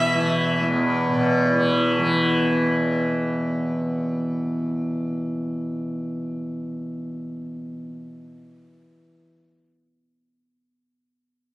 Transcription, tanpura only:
Already playing: E2 B2 E3
0.15 E3
0.61 E2
1.08 B2
1.53 E3
1.99 E3

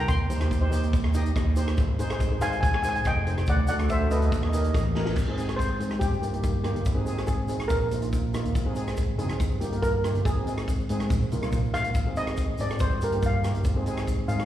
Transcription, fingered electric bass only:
0.09 D#2
0.30 D#2
0.71 D#2
1.36 D#2
1.78 G#1
2.00 G#1
2.41 G#1
3.05 F1
3.48 D2
3.68 D2
4.10 D2
4.32 D#2
4.74 A1
5.16 G#1
5.79 G#2
6.01 G1
6.75 G1
6.86 G#1
7.49 G#1
7.70 A#1
8.45 D#2
8.55 G#1
9.18 F#1
9.40 G1
10.15 G1
10.25 G#1
10.89 G#2
11.11 A#1
11.32 C2
11.53 A#1
11.75 G#1
11.95 G#1
12.60 G#1
12.80 G1
13.55 G1
13.65 G#1
14.28 G#2

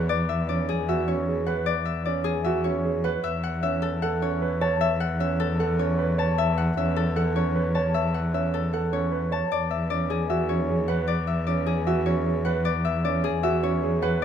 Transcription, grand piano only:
Already playing: B4
0.49 C#4
0.89 F#4
1.08 C#4
1.28 G#4
1.48 B4
2.07 C#4
2.46 F#4
2.65 C#4
2.85 G#4
3.04 B4
3.63 C#4
4.03 A4
4.22 C#4
4.42 B4
4.61 C#5
5.20 C#4
5.59 A4
5.79 C#4
5.98 B4
6.18 C#5
6.77 C#4
7.16 A4
7.36 C#4
7.56 B4
7.75 C#5
8.34 C#4
8.73 A4
8.93 C#4
9.12 B4
9.32 C#5
9.91 C#4
10.30 F#4
10.50 C#4
10.69 G#4
10.89 B4
11.48 C#4
11.87 F#4
12.07 C#4
12.26 G#4
12.46 B4
13.04 C#4
13.43 F#4
13.63 C#4
13.83 G#4
14.03 B4

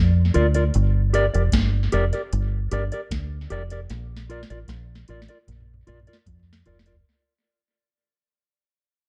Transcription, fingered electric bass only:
Already playing: F2
0.36 D2
0.75 G1
1.35 F1
1.53 G1
1.93 F1
2.33 G1
2.72 G1
3.11 D2
3.51 F1
3.90 A#1
4.50 A1
4.69 A#1
5.09 A1
5.48 A#1
5.88 A#1
6.27 F2
6.67 F1

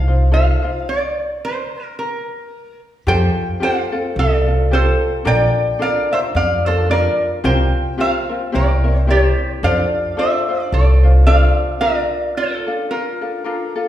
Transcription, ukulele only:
0.08 D#4 F4 C5
0.31 D#4 F4 A4 C5
0.62 D#4 F4 C5
3.07 C4 F4 G4 A4
3.60 C4 F4 G4 A4
3.92 C4 F4 A4
4.46 C4 F4 A4
4.71 C4 F4 G4 A4
5.25 D4 F4 A4 A#4
5.79 D4 F4 A4 A#4
6.11 D4 F4 A#4
6.66 D4 F4 A#4
6.89 D4 F4 A#4
7.44 C4 F4 G4 A#4
7.98 C4 F4 G4 A#4
8.29 C4 F4 A#4
8.52 C4 E4 G4 A#4
8.84 C4 E4 A#4
9.07 C4 E4 G4 A#4
9.63 D4 F4 A4 C5
10.17 D4 F4 A4 C5
10.49 D4 F4 C5
11.03 D4 F4 C5
11.27 D4 F4 A4 C5
11.81 D4 F4 A#4
12.66 D4 F4 A4
13.21 D4 F4 A4
13.44 D4 F4 A4 A#4
13.76 D4 F4 A4

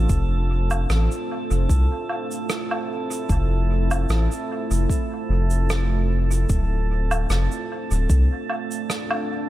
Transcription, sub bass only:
0.10 F1
0.89 A1
1.51 F1
1.69 C2
3.29 F1
4.09 A1
4.71 F1
5.29 F1
6.50 D1
7.29 F1
7.91 D1
8.10 C2

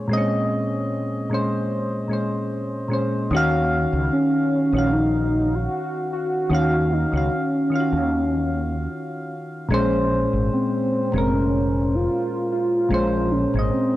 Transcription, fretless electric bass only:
3.31 D#2
3.93 C#2
4.73 A#1
6.50 D#2
7.13 C#2
7.92 D#2
9.70 A#1
10.33 G#1
11.13 F1
12.91 A#1
13.54 G#1

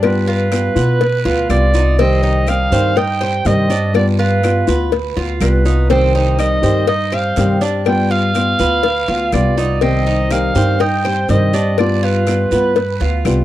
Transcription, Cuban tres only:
Already playing: D4
0.27 F4
0.77 B4
1.25 F4
1.75 D#4
1.99 C4
2.23 D#4
2.72 C5
2.97 D#4
3.21 C5
3.70 D4
4.19 F4
4.69 B4
5.17 F4
5.66 D#4
5.90 C4
6.15 D#4
6.63 C5
6.87 D#4
7.12 C5
7.61 D4
8.11 F4
8.60 B4
9.08 F4
9.58 D#4
9.82 C4
10.07 D#4
10.56 C5
10.80 D#4
11.05 C5
11.54 D4
12.03 F4
12.52 B4
13.01 F4

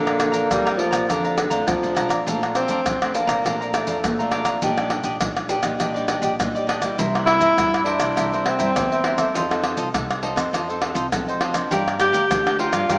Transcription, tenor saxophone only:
Already playing: D3
0.51 G3
0.78 F3
1.10 D3
1.68 F3
2.55 C4
3.14 A#3
3.74 A3
7.26 E4
7.84 D4
8.46 C4
12.00 G4
12.60 F4

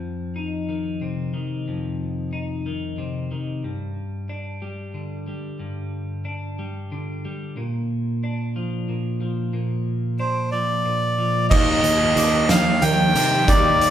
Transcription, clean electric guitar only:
Already playing: F2
0.36 D#4
0.69 D#3
1.02 C3
1.34 D#3
1.68 F2
2.33 D#4
2.66 D#3
2.98 C3
3.31 D#3
3.64 G2
4.29 D4
4.62 G3
4.94 D3
5.28 G3
5.60 G2
6.25 D4
6.59 G3
6.92 D3
7.25 G3
7.57 A#2
8.24 D4
8.56 F3
8.89 A#2
9.21 F3
9.53 A#2
10.19 D4
10.52 F3
10.85 A#2
11.18 F3
11.51 D#3
12.17 D4
12.50 G3
12.82 D#3
13.15 G3
13.48 D#3

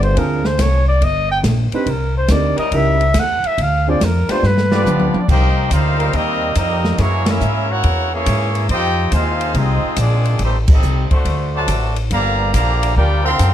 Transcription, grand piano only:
0.17 C4 D4 F4 G#4 C5
1.74 C4 D4 D#4 G4 C5
2.30 C4 D4 D#4 G4 A#4
2.74 C#4 D#4 E4 G4 A#4
3.88 C4 D4 F4 G#4 C5
4.31 B3 D4 F4 G4 D5

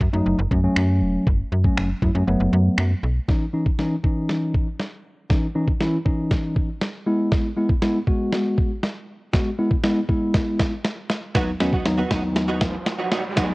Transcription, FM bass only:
0.01 F#2
0.13 F#2
0.26 F#1
0.39 F#1
0.51 F#2
0.76 F#2
1.02 E1
1.27 F#1
1.52 F#2
1.77 F#1
2.02 F#2
2.15 F#2
2.28 F#1
2.40 F#1
2.53 F#2
2.78 F#2
3.03 B1

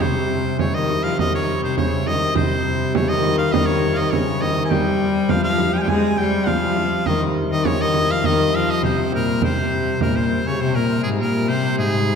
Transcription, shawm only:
0.01 C5
0.60 C#5
0.75 D#5
1.03 F5
1.20 D#5
1.35 C#5
1.64 C5
1.78 C#5
2.08 D#5
2.36 C5
2.95 C#5
3.09 D#5
3.38 F5
3.52 D#5
3.66 C#5
3.94 D#5 F5
4.11 C#5
4.41 D#5
4.65 G#5
4.71 G5
5.29 F5
5.43 F5
5.73 G5
5.78 G5 G#5
5.89 G#5
6.18 G5
6.46 F5
7.07 D#5
7.52 D#5
7.67 C#5
7.82 D#5
8.11 F5
8.26 D#5
8.55 F5
8.71 D#5
8.84 C5
9.15 A#4
9.44 C5
10.02 A#4
10.16 C5
10.47 C#5
10.61 C5
10.75 A#4
11.03 G#4
11.19 A#4
11.48 C5
11.78 G#4

